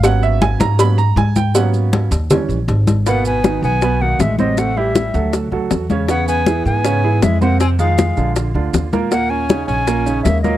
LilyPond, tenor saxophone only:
\new Staff \with { instrumentName = "Tenor saxophone" } { \time 4/4 \key gis \minor \tempo 4 = 159 r1 | r1 | ais8 b4 b4 ais8 gis8 fis8 | a8 g4. r2 |
b8 b4 b4. gis8 ais8 | c'8 aes4. r2 | ais8 cis'4 cis'4. ais8 fis8 | }